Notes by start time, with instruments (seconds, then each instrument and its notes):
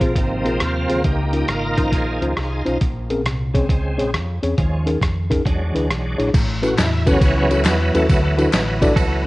Already playing: tonewheel organ C3 F3 A#3
0.01 fingered electric bass A#1, tine electric piano C4 F4 G#4 C5, kick, closed hi-hat
0.16 fingered electric bass G#1, tonewheel organ A#3 C4 D#4, kick, closed hi-hat
0.45 fingered electric bass A#1, tine electric piano C4 F4 G#4 A#4, closed hi-hat
0.60 fingered electric bass D#2, tonewheel organ A#3 C4 F4, cross-stick, closed hi-hat
0.89 fingered electric bass D2, tine electric piano C4 F4 G#4 C5, closed hi-hat
1.04 fingered electric bass C#2, tine electric piano C#3, tonewheel organ A#3 D#4 G4, kick, closed hi-hat
1.33 tine electric piano C#4 D#4 F4 A#4, closed hi-hat
1.48 fingered electric bass G#1, tonewheel organ D#4 F4 A#4, cross-stick, closed hi-hat
1.77 tonewheel organ D#3 F3 A#3, tine electric piano C#4 D#4 F4 A#4, kick, closed hi-hat
1.92 fingered electric bass A#1, tonewheel organ D#4 F4 G#4, kick, closed hi-hat
2.21 fingered electric bass C#2, tine electric piano C#4 D#4 F4 C5, closed hi-hat
2.37 fingered electric bass C2, cross-stick, closed hi-hat
2.66 fingered electric bass B1, tine electric piano C#4 D#4 F4 C5, closed hi-hat
2.81 fingered electric bass A#1, tine electric piano A#2, kick, closed hi-hat
3.10 tine electric piano C4 C#4 G#4 A#4, closed hi-hat
3.25 fingered electric bass C2, cross-stick, closed hi-hat
3.54 tonewheel organ C#3 G#3 C4, tine electric piano C4 C#4 G#4 C#5, kick, closed hi-hat
3.69 fingered electric bass C#2, kick, closed hi-hat
3.98 fingered electric bass A#1, tine electric piano C4 C#4 G#4 C#5, closed hi-hat
4.14 fingered electric bass F2, cross-stick, closed hi-hat
4.43 fingered electric bass E2, tine electric piano C4 C#4 G#4 C#5, closed hi-hat
4.57 fingered electric bass D#2, tine electric piano D#3, tonewheel organ F3 G#3 C#4, kick, closed hi-hat
4.86 tine electric piano C#4 D#4 G#4 A#4, closed hi-hat
5.02 fingered electric bass F2, kick, cross-stick, closed hi-hat
5.30 tine electric piano C#4 D#4 G#4 A#4, kick, cross-stick, closed hi-hat
5.45 fingered electric bass E2, tine electric piano E3, tonewheel organ F#3 G#3 D4, kick, closed hi-hat
5.75 fingered electric bass D2, tine electric piano D4 E4 G#4 B4, closed hi-hat
5.90 fingered electric bass B1, cross-stick, closed hi-hat
6.18 fingered electric bass A#1, tine electric piano D4 E4 G#4 C#5, closed hi-hat
6.27 cross-stick
6.33 fingered electric bass A1, tine electric piano A2, kick, crash, ride, tambourine
6.62 tine electric piano C#4 E4 F#4 A4 B4, tonewheel organ F#4, ride, tambourine
6.78 fingered electric bass E2, tonewheel organ E4, snare, clap, ride, tambourine
7.06 tonewheel organ C#3 F#3 B3 C#4, tine electric piano C#4 E4 F#4 A4 B4, kick, ride, tambourine
7.21 fingered electric bass C#2, tonewheel organ E3 F#3 C#4, kick, ride, tambourine
7.50 tonewheel organ E3 F#3, tine electric piano C#4 E4 F#4 A4 C#5, ride, tambourine
7.55 tonewheel organ B3
7.64 fingered electric bass E2, snare, clap, ride, tambourine
7.94 fingered electric bass D#2, tonewheel organ E3 F#3 A3, tine electric piano C#4 E4 F#4 A4 B4, ride, tambourine
8.09 fingered electric bass D2, tine electric piano D3, tonewheel organ E3 F#3 B3, kick, ride, tambourine
8.38 tine electric piano D4 E4 F#4 A4 B4, ride, tambourine
8.53 fingered electric bass A1, snare, clap, ride, tambourine
8.81 tine electric piano D4 E4 F#4 A4 D5, kick, ride, tambourine
8.96 fingered electric bass C#2, clean electric guitar F#4 A4, kick, ride, tambourine